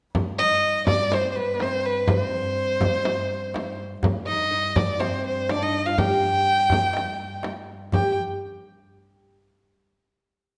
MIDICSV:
0, 0, Header, 1, 6, 480
1, 0, Start_track
1, 0, Tempo, 485437
1, 148, Time_signature, 4, 2, 24, 8
1, 10460, End_track
2, 0, Start_track
2, 0, Title_t, "Violin"
2, 0, Program_c, 0, 40
2, 380, Note_on_c, 0, 75, 94
2, 832, Note_off_c, 0, 75, 0
2, 863, Note_on_c, 0, 74, 82
2, 1119, Note_on_c, 0, 72, 80
2, 1134, Note_off_c, 0, 74, 0
2, 1295, Note_off_c, 0, 72, 0
2, 1300, Note_on_c, 0, 72, 53
2, 1350, Note_on_c, 0, 71, 70
2, 1364, Note_off_c, 0, 72, 0
2, 1597, Note_on_c, 0, 72, 80
2, 1612, Note_off_c, 0, 71, 0
2, 1830, Note_on_c, 0, 71, 70
2, 1845, Note_off_c, 0, 72, 0
2, 2077, Note_off_c, 0, 71, 0
2, 2077, Note_on_c, 0, 71, 77
2, 2185, Note_off_c, 0, 71, 0
2, 2185, Note_on_c, 0, 72, 77
2, 3758, Note_off_c, 0, 72, 0
2, 4229, Note_on_c, 0, 75, 88
2, 4706, Note_on_c, 0, 74, 74
2, 4720, Note_off_c, 0, 75, 0
2, 4942, Note_on_c, 0, 72, 71
2, 4957, Note_off_c, 0, 74, 0
2, 5189, Note_off_c, 0, 72, 0
2, 5208, Note_on_c, 0, 72, 72
2, 5445, Note_on_c, 0, 74, 83
2, 5460, Note_off_c, 0, 72, 0
2, 5563, Note_on_c, 0, 75, 80
2, 5578, Note_off_c, 0, 74, 0
2, 5792, Note_on_c, 0, 77, 76
2, 5807, Note_off_c, 0, 75, 0
2, 5921, Note_on_c, 0, 79, 93
2, 5935, Note_off_c, 0, 77, 0
2, 7356, Note_off_c, 0, 79, 0
2, 7852, Note_on_c, 0, 79, 72
2, 8066, Note_off_c, 0, 79, 0
2, 10460, End_track
3, 0, Start_track
3, 0, Title_t, "Oud"
3, 0, Program_c, 1, 24
3, 391, Note_on_c, 1, 63, 79
3, 1113, Note_off_c, 1, 63, 0
3, 1117, Note_on_c, 1, 60, 67
3, 1354, Note_on_c, 1, 59, 60
3, 1362, Note_off_c, 1, 60, 0
3, 1510, Note_off_c, 1, 59, 0
3, 1522, Note_on_c, 1, 59, 44
3, 1591, Note_off_c, 1, 59, 0
3, 1607, Note_on_c, 1, 60, 55
3, 2055, Note_off_c, 1, 60, 0
3, 2067, Note_on_c, 1, 60, 56
3, 3713, Note_off_c, 1, 60, 0
3, 4233, Note_on_c, 1, 63, 67
3, 4447, Note_off_c, 1, 63, 0
3, 4459, Note_on_c, 1, 63, 58
3, 4934, Note_off_c, 1, 63, 0
3, 4938, Note_on_c, 1, 60, 62
3, 5432, Note_off_c, 1, 60, 0
3, 5436, Note_on_c, 1, 62, 65
3, 5552, Note_off_c, 1, 62, 0
3, 5556, Note_on_c, 1, 63, 65
3, 5800, Note_off_c, 1, 63, 0
3, 5804, Note_on_c, 1, 65, 73
3, 5913, Note_off_c, 1, 65, 0
3, 5917, Note_on_c, 1, 67, 77
3, 7315, Note_off_c, 1, 67, 0
3, 7851, Note_on_c, 1, 67, 76
3, 8065, Note_off_c, 1, 67, 0
3, 10460, End_track
4, 0, Start_track
4, 0, Title_t, "Double bass"
4, 0, Program_c, 2, 43
4, 142, Note_on_c, 2, 43, 58
4, 3977, Note_off_c, 2, 43, 0
4, 3983, Note_on_c, 2, 43, 64
4, 7875, Note_off_c, 2, 43, 0
4, 10460, End_track
5, 0, Start_track
5, 0, Title_t, "Darbuka"
5, 148, Note_on_c, 9, 64, 75
5, 247, Note_off_c, 9, 64, 0
5, 391, Note_on_c, 9, 62, 20
5, 490, Note_off_c, 9, 62, 0
5, 748, Note_on_c, 9, 62, 22
5, 847, Note_off_c, 9, 62, 0
5, 865, Note_on_c, 9, 64, 81
5, 963, Note_off_c, 9, 64, 0
5, 1110, Note_on_c, 9, 63, 53
5, 1209, Note_off_c, 9, 63, 0
5, 1578, Note_on_c, 9, 63, 53
5, 1677, Note_off_c, 9, 63, 0
5, 2060, Note_on_c, 9, 64, 77
5, 2159, Note_off_c, 9, 64, 0
5, 2294, Note_on_c, 9, 62, 23
5, 2393, Note_off_c, 9, 62, 0
5, 2655, Note_on_c, 9, 62, 24
5, 2754, Note_off_c, 9, 62, 0
5, 2775, Note_on_c, 9, 64, 87
5, 2874, Note_off_c, 9, 64, 0
5, 3024, Note_on_c, 9, 63, 57
5, 3123, Note_off_c, 9, 63, 0
5, 3503, Note_on_c, 9, 63, 62
5, 3602, Note_off_c, 9, 63, 0
5, 3983, Note_on_c, 9, 64, 80
5, 4082, Note_off_c, 9, 64, 0
5, 4221, Note_on_c, 9, 62, 21
5, 4320, Note_off_c, 9, 62, 0
5, 4589, Note_on_c, 9, 62, 21
5, 4687, Note_off_c, 9, 62, 0
5, 4705, Note_on_c, 9, 64, 85
5, 4804, Note_off_c, 9, 64, 0
5, 4949, Note_on_c, 9, 63, 62
5, 5048, Note_off_c, 9, 63, 0
5, 5437, Note_on_c, 9, 63, 63
5, 5536, Note_off_c, 9, 63, 0
5, 5913, Note_on_c, 9, 64, 73
5, 6012, Note_off_c, 9, 64, 0
5, 6033, Note_on_c, 9, 62, 25
5, 6132, Note_off_c, 9, 62, 0
5, 6513, Note_on_c, 9, 62, 23
5, 6612, Note_off_c, 9, 62, 0
5, 6622, Note_on_c, 9, 64, 85
5, 6721, Note_off_c, 9, 64, 0
5, 6745, Note_on_c, 9, 62, 22
5, 6844, Note_off_c, 9, 62, 0
5, 6855, Note_on_c, 9, 63, 60
5, 6954, Note_off_c, 9, 63, 0
5, 7348, Note_on_c, 9, 63, 58
5, 7447, Note_off_c, 9, 63, 0
5, 7835, Note_on_c, 9, 64, 68
5, 7934, Note_off_c, 9, 64, 0
5, 10460, End_track
6, 0, Start_track
6, 0, Title_t, "Frame drum"
6, 146, Note_on_c, 9, 64, 77
6, 245, Note_off_c, 9, 64, 0
6, 857, Note_on_c, 9, 64, 75
6, 956, Note_off_c, 9, 64, 0
6, 1105, Note_on_c, 9, 64, 68
6, 1204, Note_off_c, 9, 64, 0
6, 1585, Note_on_c, 9, 64, 62
6, 1684, Note_off_c, 9, 64, 0
6, 2052, Note_on_c, 9, 64, 78
6, 2151, Note_off_c, 9, 64, 0
6, 2783, Note_on_c, 9, 64, 72
6, 2882, Note_off_c, 9, 64, 0
6, 3019, Note_on_c, 9, 64, 64
6, 3118, Note_off_c, 9, 64, 0
6, 3518, Note_on_c, 9, 64, 65
6, 3617, Note_off_c, 9, 64, 0
6, 3995, Note_on_c, 9, 64, 77
6, 4094, Note_off_c, 9, 64, 0
6, 4709, Note_on_c, 9, 64, 77
6, 4808, Note_off_c, 9, 64, 0
6, 4949, Note_on_c, 9, 64, 64
6, 5048, Note_off_c, 9, 64, 0
6, 5433, Note_on_c, 9, 64, 66
6, 5532, Note_off_c, 9, 64, 0
6, 5917, Note_on_c, 9, 64, 75
6, 6015, Note_off_c, 9, 64, 0
6, 6647, Note_on_c, 9, 64, 69
6, 6745, Note_off_c, 9, 64, 0
6, 6890, Note_on_c, 9, 64, 59
6, 6988, Note_off_c, 9, 64, 0
6, 7361, Note_on_c, 9, 64, 58
6, 7460, Note_off_c, 9, 64, 0
6, 7845, Note_on_c, 9, 64, 67
6, 7944, Note_off_c, 9, 64, 0
6, 10460, End_track
0, 0, End_of_file